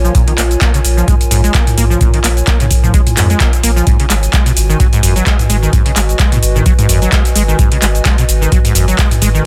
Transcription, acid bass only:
0.04 F3
0.15 A#2
0.27 D#3
0.38 A#3
0.61 A#3
0.74 C#3
0.97 F3
1.08 G#3
1.31 G#2
1.44 G#3
1.54 A#3
1.78 A#3
1.90 F3
2.01 A#2
2.14 D#3
2.24 A#3
2.47 A#3
2.60 C#3
2.83 F3
2.94 G#3
3.17 G#2
3.30 G#3
3.40 A#3
3.63 A#3
3.76 F3
3.87 G#2
4.00 C#3
4.10 G#3
4.33 G#3
4.46 B2
4.69 D#3
4.80 F#3
4.93 G#2
5.03 F#2
5.16 F#3
5.26 G#3
5.50 G#3
5.62 D#3
5.73 G#2
5.86 C#3
5.96 G#3
6.19 G#3
6.32 B2
6.55 D#3
6.66 F#3
6.79 G#2
6.89 F#2
7.02 F#3
7.12 G#3
7.35 G#3
7.48 D#3
7.59 G#2
7.72 C#3
7.82 G#3
8.05 G#3
8.18 B2
8.41 D#3
8.52 F#3
8.65 G#2
8.75 F#2
8.88 F#3
8.98 G#3
9.22 G#3
9.35 D#3

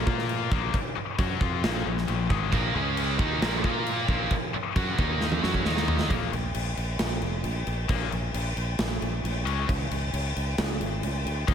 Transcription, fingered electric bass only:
0.07 A#2
0.51 A#1
0.96 muted fingered electric bass stroke
1.19 F#2
1.41 F2
1.64 A#1
1.86 A#1
2.09 A#1
2.30 G#1
2.53 A#1
2.75 C#2
3.19 D#2
3.42 A#1
3.64 A#2
4.08 A#1
4.54 muted fingered electric bass stroke
4.76 F#2
4.98 D#2
5.44 F#2
5.66 D#2
6.10 A#1
6.32 A#1
6.55 A#1
6.77 A#1
7.00 A#1
7.23 F1
7.44 A#1
7.67 A#1
7.89 A#1
8.12 A#1
8.34 A#1
8.56 A#1
8.79 A#1
9.02 A#1
9.24 A#1
9.46 C#2
9.69 C#2
9.91 C#2
10.13 C#2
10.36 C#2
10.58 C#2
10.80 G#1
11.03 C#2
11.25 D2
11.48 D#2

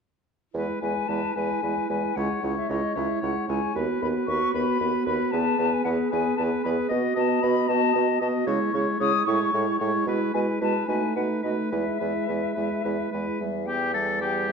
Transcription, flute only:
0.81 G#5
1.08 A5
1.35 G#5
1.89 G#5
2.16 F#5
2.57 E5
2.69 D#5
2.96 E5
3.23 F#5
3.48 G#5
4.01 B5
4.27 C#6
4.53 B5
5.07 B5
5.31 A5
5.74 G#5
5.84 F#5
6.11 G#5
6.37 A5
6.64 B5
7.17 A5
7.43 B5
7.68 A5
8.22 A5
8.73 C#6
9.01 D#6
9.26 C#6
9.79 C#6
10.34 G#5
10.62 A5
10.87 G#5
11.16 F#5
11.43 D#5
11.72 E5
13.40 E5
13.66 G5
13.94 E5
14.21 G5
14.48 E5

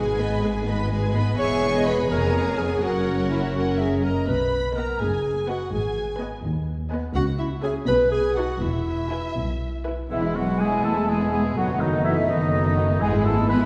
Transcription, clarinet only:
Already playing: G#4
1.39 C#5
1.87 B4
2.11 A#4
2.59 G#4
2.83 F#4
3.31 E4
3.55 F#4
3.80 G#4
4.04 A#4
4.28 B4
4.76 A#4
5.01 G#4
5.50 F#4
5.74 G#4
7.15 F#4
7.39 E4
7.63 G#4
7.88 B4
8.12 G#4
8.37 F#4
8.61 E4
10.11 B3
13.02 E4

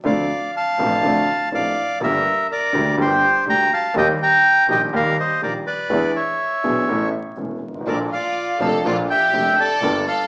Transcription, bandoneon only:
0.05 D5 F5
0.57 F5 A5
1.54 D5 F5
2.03 A#4 E5
2.52 A#4 D5
3.01 G4 C5
3.49 G5 A#5
3.73 F5 A5
3.98 D#5 G5
4.22 G5 A#5
4.71 D#5 G5
4.96 A#4 F5
5.20 C5 D#5
5.43 A#4 D5
5.67 B4 D5
6.16 C#5 E5
7.88 A#4 D5
8.13 D5 F5
8.61 F5 A5
8.86 D5 F5
9.10 E5 G5
9.60 D5 A5
10.07 F5 A5

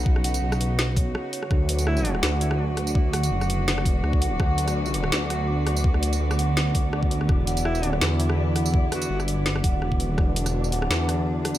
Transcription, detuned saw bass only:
Already playing: B1
0.42 B1
1.51 D2
2.23 D2
3.31 F#1
3.81 F1
4.03 D2
4.40 D2
5.12 D2
6.20 D2
6.75 D2
7.29 E1
7.79 D#1
8.01 E2
9.10 G1
9.82 E1
10.18 E1
10.68 D#1
10.90 E2

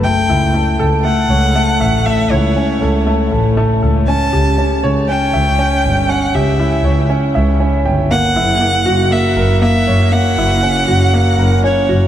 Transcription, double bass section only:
0.29 C#2
0.80 C#2
1.30 C#2
1.80 A1
2.30 C#2
2.81 C#2
3.32 A1
3.82 C#2
4.33 C#2
4.83 C#2
5.34 C#2
5.84 G1
6.34 C#2
6.84 C#2
7.35 C#2
7.85 G1
8.36 F#1
8.86 F#1
9.37 F#1
9.88 F#2
10.37 F#1
10.88 F#1
11.38 F#1
11.89 F#1

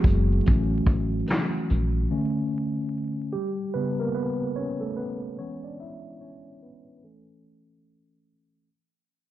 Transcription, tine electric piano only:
Already playing: E3 F#3 G#3 B3 F#4 G#4
0.46 E3 A3 C#4
2.10 D3 A3 C#4
3.33 G3 G4
3.74 C#3 G3 B3 B4
4.00 A#3 A#4
4.14 B3 B4
4.56 C#4 C#5
4.81 A3 A4
4.97 B3 B4
5.38 E3 G#3 B3 C#4 C#5
5.64 D4 D5
5.80 E4 E5
6.21 C#4 C#5
6.63 B3 B4
6.98 B4
7.04 E3 A3 C#4 A4

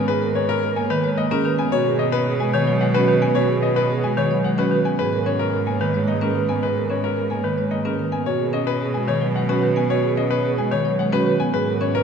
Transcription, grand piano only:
Already playing: G#5
0.08 B4
0.35 C#5
0.49 A#4
0.76 G#5
0.90 B4
1.18 D#5
1.31 A#4
1.59 G#5
1.72 C#5
1.99 D#5
2.12 B4
2.40 G#5
2.54 C#5
2.81 F#5
2.94 B4
3.22 G#5
3.35 C#5
3.63 D#5
3.76 B4
4.04 G#5
4.17 C#5
4.44 F#5
4.59 B4
4.85 G#5
4.99 B4
5.26 C#5
5.39 A#4
5.67 G#5
5.81 B4
6.08 D#5
6.22 A#4
6.49 G#5
6.63 B4
6.90 C#5
7.04 A#4
7.31 G#5
7.44 B4
7.71 D#5
7.85 A#4
8.12 G#5
8.26 C#5
8.54 D#5
8.67 B4
8.94 G#5
9.08 C#5
9.36 F#5
9.49 B4
9.77 G#5
9.90 C#5
10.17 D#5
10.31 B4
10.58 G#5
10.72 C#5
10.99 F#5
11.13 B4
11.40 G#5
11.54 B4
11.81 C#5
11.95 A#4

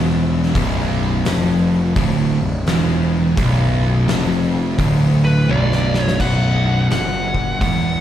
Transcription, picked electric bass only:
Already playing: E1
0.55 B0
1.26 F1
1.96 D1
2.41 B0
2.66 E1
3.37 B0
4.08 F1
4.79 D1
5.49 B0
6.20 B0
6.91 F#1
7.61 E1

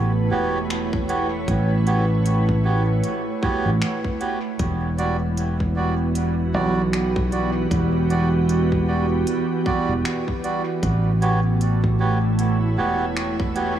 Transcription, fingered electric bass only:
Already playing: A1
0.31 E1
1.48 A1
3.66 A1
4.59 E1
6.54 B1
7.71 E1
9.89 E1
10.83 A1
12.78 E1

